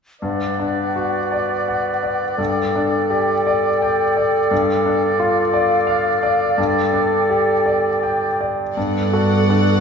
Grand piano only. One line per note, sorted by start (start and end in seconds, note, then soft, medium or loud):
0.22 2.35 G2 soft
0.60 1.18 D4 soft
0.96 1.53 F#4 soft
1.32 1.88 D5 soft
1.68 2.25 F#5 soft
2.03 2.39 D5 soft
2.38 4.47 G2 soft
2.75 3.32 D4 soft
3.10 3.67 G4 soft
3.47 4.03 D5 soft
3.82 4.38 G5 soft
4.17 4.51 D5 soft
4.51 6.54 G2 soft
4.86 5.40 D4 soft
5.20 5.75 F4 soft
5.54 6.09 D5 soft
5.87 6.43 F5 soft
6.23 6.58 D5 soft
6.58 8.72 G2 soft
6.93 7.51 D4 soft
7.30 7.88 G4 soft
7.66 8.25 D5 soft
8.03 8.62 G5 soft
8.41 8.77 D5 soft
8.77 9.12 G2 soft
9.13 9.46 F#4 soft
9.13 9.46 A4 soft
9.49 9.80 D4 soft
9.49 9.80 F#4 soft
9.49 9.80 A4 soft